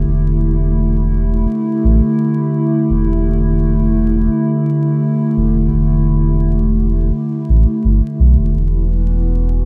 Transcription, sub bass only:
0.08 E1
1.84 A1
2.90 E1
5.37 E1
5.73 E1
7.49 A1
7.85 G1
8.20 B1
8.38 E1
8.55 E1

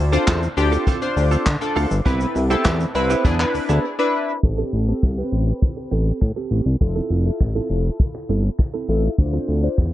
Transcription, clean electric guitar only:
0.12 C4 F4 A4
0.27 C4 F4 A4
0.42 muted clean electric guitar stroke
0.57 muted clean electric guitar stroke
0.72 C4 F4 A4
0.87 C4 F4 A4
1.02 muted clean electric guitar stroke
1.16 muted clean electric guitar stroke
1.31 C4 F4 A4
1.46 muted clean electric guitar stroke
1.61 muted clean electric guitar stroke
1.76 C4 F4 A4
1.91 muted clean electric guitar stroke
2.05 B3 E4 G4
2.20 muted clean electric guitar stroke
2.35 muted clean electric guitar stroke
2.50 B3 E4 G4
2.65 B3 E4 G4
2.80 muted clean electric guitar stroke
2.95 muted clean electric guitar stroke
3.10 B3 E4 G4
3.25 B3 D4 G#4
3.40 muted clean electric guitar stroke
3.54 muted clean electric guitar stroke
3.69 B3 D4 G#4
4.43 muted clean electric guitar stroke
4.58 C4 G4 A4
4.73 C4 G4 A4
4.88 muted clean electric guitar stroke
5.03 muted clean electric guitar stroke
5.18 muted clean electric guitar stroke
5.47 muted clean electric guitar stroke
5.62 muted clean electric guitar stroke
5.77 muted clean electric guitar stroke
5.91 C4 G4 A4
6.06 C4 G4 A4
6.36 C4 G4 A4
6.51 C4 G4 A4
6.66 muted clean electric guitar stroke
6.81 muted clean electric guitar stroke
6.96 C4 E4 A4
7.11 C4 E4 A4
7.40 muted clean electric guitar stroke
7.55 C4 E4 A4
7.70 muted clean electric guitar stroke
7.85 muted clean electric guitar stroke
8.14 muted clean electric guitar stroke
8.29 C4 E4 A4
8.44 muted clean electric guitar stroke
8.59 muted clean electric guitar stroke
8.74 C4 E4 A4
8.89 C4 E4 A4
9.03 muted clean electric guitar stroke
9.18 muted clean electric guitar stroke
9.33 C4 F4 A4
9.48 C4 F4 A4
9.63 muted clean electric guitar stroke
9.78 muted clean electric guitar stroke

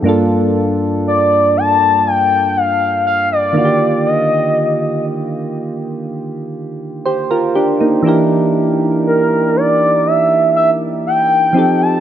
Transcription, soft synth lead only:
1.07 D5
1.57 A5
2.07 G5
2.57 F5
3.07 F5
3.32 D5
4.07 D#5
9.07 A#4
9.56 D5
10.07 E5
10.56 E5
11.07 G5
11.82 A5

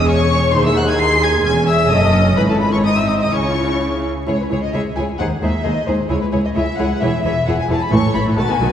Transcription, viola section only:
Already playing: C#4 G#4
0.54 D#4 G#4
1.46 C#4
1.91 A4
2.37 E4
2.84 C4 D#4
3.32 C#4 E4
4.27 G#3 E4
4.50 G#3 E4
4.73 G#3 E4
4.96 G#3 E4
5.20 G#3 D#4
5.42 G#3 D#4
5.65 G#3 D#4
5.87 G#3 D#4
6.09 G#3 E4
6.32 G#3 E4
6.55 G#3 E4
6.78 G#3 E4
7.01 E3 E4
7.24 E3 E4
7.48 E3 E4
7.69 E3 E4
7.92 E3 A3
8.14 E3 E4
8.25 E3 A3
8.37 D#3 A3
8.49 D#3 B3
8.61 D#3 F#3

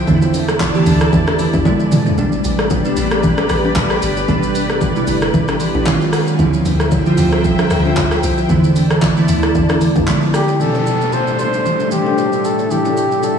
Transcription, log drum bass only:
0.07 E2
0.86 D2
1.13 E2
1.54 E2
2.18 A1
2.44 A1
2.97 A1
3.50 A1
3.76 A1
4.02 G1
4.29 A1
5.08 G1
5.34 A1
5.75 A1
6.39 D2
6.65 D2
7.18 D2
7.71 D2
7.97 D2
8.23 C2
8.49 E2
9.29 D2
9.55 E2
9.96 E2

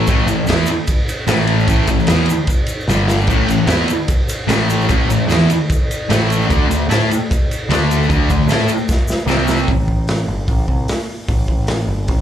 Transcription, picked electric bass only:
0.08 A1
0.26 A1
0.46 E2
1.27 A1
1.68 A1
1.88 A1
2.08 E2
2.88 G1
3.27 A1
3.48 A1
3.67 E2
4.47 A1
4.89 A1
5.08 A1
5.28 E2
6.10 A1
6.50 D2
6.69 D2
6.90 A2
7.69 D2
8.10 D2
8.30 D2
8.48 A2
9.26 C2
9.68 A1
10.28 G1
10.48 A1
10.68 C2
11.29 A1
11.87 G1
12.08 A1

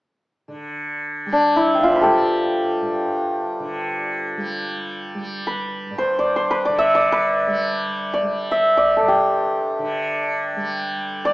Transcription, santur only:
1.33 D4
1.56 E4
1.75 G5
1.79 F5
1.83 F4 D5 E5
1.92 C5
1.96 B4
2.01 G4 A4
5.47 B4
5.98 C5
6.19 D5
6.36 C5
6.51 B4
6.65 D5
6.78 E5
6.95 D5
7.12 B4
8.14 D5
8.51 E5
8.77 D5
8.97 A4
9.08 G4
11.25 D5

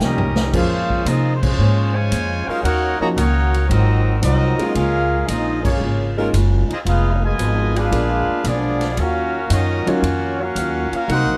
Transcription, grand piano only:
Already playing: F3 G3 C#4 G5
0.53 F3 A#3 C#4 G#4 C5
3.02 F3 A#3 C#4 D#4 F#4
4.59 G#3 A#3 C#4 D#4 F4
6.17 G#3 A#3 C#4 D#4 F4
7.91 G#3 A#3 B3 D4 F4
9.87 F#3 C#4 D#4 F4 A#4
11.10 A#3 C4 D#4 F#4 A#4

